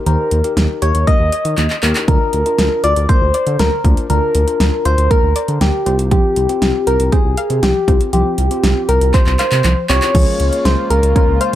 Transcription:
0.06 analog synth bass D#2, synth arpeggio sound D#3, tine electric piano D#4 G4 C5, soft synth lead A#4, closed hi-hat
0.31 analog synth bass D#2, closed hi-hat
0.44 tine electric piano D#4 G4 A#4, closed hi-hat
0.57 analog synth bass D#2, snare, closed hi-hat
0.82 analog synth bass D#2, synth arpeggio sound G4, soft synth lead C#5, closed hi-hat
0.95 analog synth bass D#2, closed hi-hat
1.07 synth arpeggio sound A#3, soft synth lead D#5, kick, closed hi-hat
1.20 analog synth bass D#2
1.32 synth arpeggio sound D#5, closed hi-hat
1.45 analog synth bass D#3, closed hi-hat
1.58 analog synth bass D#2, synth arpeggio sound D#3, clap, closed hi-hat
1.70 clap
1.83 analog synth bass D#2, synth arpeggio sound A#3, tine electric piano D#4 G4 A#4, clap, closed hi-hat
1.95 clap, closed hi-hat
2.08 analog synth bass D2, synth arpeggio sound D3, tine electric piano D4 F4 A#4, soft synth lead A#4, kick, closed hi-hat
2.33 analog synth bass D2, closed hi-hat
2.46 tine electric piano D4 F4 A#4, closed hi-hat
2.59 analog synth bass D2, snare, closed hi-hat
2.84 analog synth bass D2, synth arpeggio sound F4, soft synth lead D5, closed hi-hat
2.96 analog synth bass D2, closed hi-hat
3.09 synth arpeggio sound A#3, soft synth lead C5, kick, closed hi-hat
3.22 analog synth bass D2
3.34 synth arpeggio sound D5, closed hi-hat
3.47 analog synth bass D3, closed hi-hat
3.59 analog synth bass D2, synth arpeggio sound D3, soft synth lead A#4, snare, closed hi-hat
3.84 analog synth bass D2, synth arpeggio sound A#3, tine electric piano D4 F4 A#4, kick, closed hi-hat
3.97 closed hi-hat
4.10 analog synth bass D2, synth arpeggio sound D3, tine electric piano D4 F4 A#4, soft synth lead A#4, closed hi-hat
4.35 analog synth bass D2, closed hi-hat
4.48 tine electric piano D4 F4 A#4, closed hi-hat
4.60 analog synth bass D2, snare, closed hi-hat
4.85 analog synth bass D2, synth arpeggio sound F4, soft synth lead C5, closed hi-hat
4.98 analog synth bass D2, closed hi-hat
5.11 synth arpeggio sound A#3, soft synth lead A#4, kick, closed hi-hat
5.23 analog synth bass D2
5.36 synth arpeggio sound D5, closed hi-hat
5.48 analog synth bass D3, closed hi-hat
5.61 analog synth bass D2, synth arpeggio sound D3, soft synth lead G4, snare, closed hi-hat
5.86 analog synth bass C2, tine electric piano C4 F4 G4, synth arpeggio sound C4, closed hi-hat
5.99 closed hi-hat
6.11 synth arpeggio sound F3, soft synth lead G4, kick, closed hi-hat
6.36 analog synth bass C2, closed hi-hat
6.49 tine electric piano C4 F4 G4, closed hi-hat
6.62 analog synth bass C2, snare, closed hi-hat
6.87 analog synth bass C2, synth arpeggio sound G4, soft synth lead A#4, closed hi-hat
7.00 analog synth bass C2, closed hi-hat
7.12 synth arpeggio sound C4, soft synth lead G#4, kick, closed hi-hat
7.25 analog synth bass C2
7.37 synth arpeggio sound F5, closed hi-hat
7.50 analog synth bass C3, closed hi-hat
7.63 analog synth bass C2, synth arpeggio sound F3, soft synth lead G4, snare, closed hi-hat
7.88 analog synth bass C2, tine electric piano C4 F4 G4, synth arpeggio sound C4, kick, closed hi-hat
8.01 closed hi-hat
8.13 analog synth bass C2, synth arpeggio sound F3, tine electric piano C4 F4 G4, soft synth lead G4, closed hi-hat
8.38 analog synth bass C2, closed hi-hat
8.51 tine electric piano C4 F4 G4, closed hi-hat
8.63 analog synth bass C2, snare, closed hi-hat
8.89 analog synth bass C2, synth arpeggio sound G4, soft synth lead A#4, closed hi-hat
9.01 analog synth bass C2, closed hi-hat
9.14 synth arpeggio sound C4, soft synth lead C5, kick, clap, closed hi-hat
9.27 analog synth bass C2, clap
9.39 soft synth lead C5, synth arpeggio sound F5, clap, closed hi-hat
9.52 analog synth bass C3, clap, closed hi-hat
9.64 analog synth bass C2, synth arpeggio sound F3, clap, closed hi-hat
9.89 analog synth bass C2, tine electric piano C4 F4 G4, synth arpeggio sound C4, soft synth lead C#5, clap, closed hi-hat
10.02 clap, closed hi-hat
10.15 analog synth bass C#2, synth arpeggio sound F3, analog synth pad A#3 F4, tine electric piano C#4 F4 G#4, kick, closed hi-hat, crash
10.40 analog synth bass C#2, closed hi-hat
10.53 closed hi-hat
10.65 analog synth bass C#2, soft synth lead C5, snare, closed hi-hat
10.90 analog synth bass C#2, synth arpeggio sound G#4, soft synth lead A#4, closed hi-hat
11.03 analog synth bass C#2, closed hi-hat
11.16 synth arpeggio sound C#4, soft synth lead A#4, kick, closed hi-hat
11.28 analog synth bass C#2
11.41 soft synth lead C5, synth arpeggio sound F5, closed hi-hat

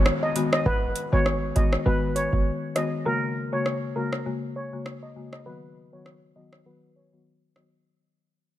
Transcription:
Already playing: downlifter
0.06 cross-stick
0.23 steel pan D#5
0.36 marimba D#3 G#3 B3 F#4, closed hi-hat
0.53 steel pan D#5, cross-stick
0.66 808-style bass G#1, steel pan B4, kick
0.96 closed hi-hat
1.12 808-style bass G#1, marimba D#3 G#3 B3 F#4, steel pan C#5
1.26 cross-stick
1.56 marimba D#3 G#3 B3 F#4, steel pan D#5, kick, closed hi-hat
1.73 cross-stick
1.85 808-style bass G#1, marimba D#3 G#3 B3 F#4, steel pan B4
2.16 steel pan C#5, closed hi-hat
2.32 808-style bass F#1, marimba D#3 G#3 B3 F#4, kick
2.76 marimba D#3 G#3 B3 F#4, steel pan D#5, cross-stick, closed hi-hat
3.05 marimba C#3 G#3 A#3 F#4, steel pan A#4
3.52 marimba C#3 G#3 A#3 F#4, steel pan C#5
3.66 cross-stick
3.96 marimba C#3 G#3 A#3 F#4, steel pan A#4
4.13 cross-stick
4.26 marimba C#3 G#3 A#3 F#4
4.56 steel pan C#5
4.72 marimba C#3 G#3 A#3 F#4
4.86 cross-stick
5.03 steel pan D#5
5.16 marimba C#3 G#3 A#3 F#4
5.33 steel pan D#5, cross-stick
5.46 marimba D#3 F#3 B3 F#4, steel pan B4
5.93 marimba D#3 F#3 B3 F#4, steel pan C#5
6.06 cross-stick
6.36 marimba D#3 F#3 B3 F#4, steel pan D#5
6.53 cross-stick
6.66 marimba D#3 F#3 B3 F#4, steel pan B4
6.96 steel pan C#5
7.13 marimba D#3 F#3 B3 F#4
7.56 marimba D#3 F#3 B3 F#4, steel pan D#5, cross-stick

